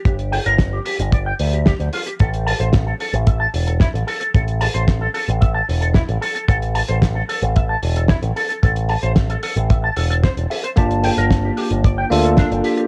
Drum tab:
HH |xxoxx-oxx-oxxxox|xxoxx-oxx-oxxxox|xxoxx-oxx-oxxxox|xxoxx-oxx-oxxxox|
SD |----o-------o---|----o-------o---|----o-------o---|----o-------o---|
BD |o---o---o---o---|o---o---o---o---|o---o---o---o---|o---o---o---o---|

HH |xxoxxxoxx-oxxxox|xxoxx-oxx-oxxxox|
SD |----o-------o---|----o-------o---|
BD |o---o---o---o---|o---o---o---o---|